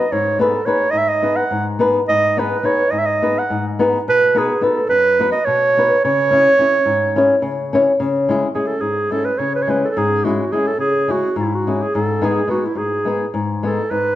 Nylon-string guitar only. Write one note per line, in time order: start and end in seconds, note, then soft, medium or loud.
0.12 0.54 G#2 medium
0.39 0.58 B3 medium
0.39 0.58 D#4 medium
0.39 0.59 G#4 medium
0.39 0.59 B4 medium
0.66 0.85 B3 medium
0.66 0.85 D#4 soft
0.66 0.85 G#4 medium
0.66 0.86 B4 medium
0.93 1.37 G#2 medium
1.22 1.42 B3 medium
1.22 1.42 D#4 medium
1.22 1.42 G#4 medium
1.22 1.43 B4 medium
1.51 1.95 G#2 medium
1.79 1.99 B3 medium
1.79 1.99 D#4 medium
1.79 2.00 G#4 medium
1.79 2.00 B4 medium
2.09 2.51 G#2 medium
2.37 2.55 B3 medium
2.37 2.56 D#4 medium
2.37 2.56 G#4 medium
2.37 2.57 B4 medium
2.63 2.82 B3 medium
2.63 2.82 D#4 medium
2.63 2.83 G#4 medium
2.63 2.82 B4 medium
2.92 3.35 G#2 medium
3.22 3.40 B3 medium
3.22 3.40 D#4 medium
3.22 3.40 G#4 medium
3.22 3.41 B4 medium
3.50 3.93 G#2 medium
3.79 3.98 B3 medium
3.79 3.98 D#4 medium
3.79 3.98 G#4 medium
3.79 3.98 B4 medium
4.08 4.49 B2 medium
4.35 4.53 B3 medium
4.35 4.53 D#4 medium
4.35 4.54 F#4 medium
4.35 4.54 B4 medium
4.61 4.79 B3 medium
4.61 4.79 D#4 medium
4.61 4.80 F#4 medium
4.61 4.80 B4 medium
4.89 5.32 F#2 medium
5.19 5.37 B3 medium
5.19 5.37 D#4 medium
5.19 5.38 F#4 medium
5.19 5.38 B4 medium
5.47 5.90 B2 medium
5.77 5.95 B3 medium
5.77 5.95 D#4 medium
5.77 5.95 F#4 medium
5.77 5.96 B4 medium
6.05 6.46 C#3 medium
6.31 6.49 C#4 medium
6.31 6.50 E4 medium
6.31 6.50 G#4 medium
6.31 6.50 C#5 medium
6.59 6.77 C#4 medium
6.59 6.77 E4 medium
6.59 6.77 G#4 medium
6.59 6.78 C#5 medium
6.85 7.29 G#2 medium
7.16 7.34 C#4 medium
7.16 7.34 E4 medium
7.16 7.35 G#4 medium
7.16 7.35 C#5 medium
7.42 7.86 C#3 medium
7.73 7.91 C#4 medium
7.73 7.92 E4 medium
7.73 7.92 G#4 medium
7.73 7.92 C#5 medium
8.00 8.42 C#3 medium
8.29 8.47 G#3 medium
8.29 8.47 C#4 medium
8.29 8.47 E4 medium
8.29 8.48 G#4 loud
8.55 8.73 G#3 soft
8.55 8.73 C#4 medium
8.55 8.73 E4 medium
8.55 8.73 G#4 medium
8.81 9.25 G#2 medium
9.10 9.30 G#3 medium
9.10 9.30 C#4 medium
9.10 9.30 E4 soft
9.10 9.30 G#4 medium
9.39 9.83 C#3 medium
9.67 9.87 G#3 medium
9.67 9.88 C#4 medium
9.67 9.88 E4 medium
9.67 9.88 G#4 medium
9.97 10.39 G#2 medium
10.25 10.43 G#3 medium
10.25 10.44 C#4 medium
10.25 10.44 E4 medium
10.25 10.44 G#4 medium
10.52 10.70 G#3 medium
10.52 10.70 C#4 medium
10.52 10.71 E4 medium
10.52 10.71 G#4 medium
10.78 11.22 C#3 soft
11.08 11.27 G#3 medium
11.08 11.27 C#4 soft
11.08 11.28 E4 soft
11.08 11.28 G#4 medium
11.36 11.80 G#2 medium
11.67 11.85 G#3 medium
11.67 11.85 C#4 medium
11.67 11.85 E4 medium
11.67 11.86 G#4 medium
11.95 12.37 G#2 medium
12.21 12.40 G#3 medium
12.21 12.40 B3 medium
12.21 12.41 D#4 medium
12.21 12.41 G#4 medium
12.47 12.66 G#3 medium
12.47 12.67 B3 medium
12.47 12.67 D#4 medium
12.47 12.67 G#4 medium
12.75 13.19 G#2 medium
13.05 13.24 G#3 medium
13.05 13.24 B3 medium
13.05 13.25 D#4 medium
13.05 13.25 G#4 medium
13.34 13.77 G#2 medium
13.63 13.82 G#3 medium
13.63 13.82 B3 medium
13.63 13.82 D#4 medium
13.63 13.83 G#4 medium
13.91 14.15 G#2 medium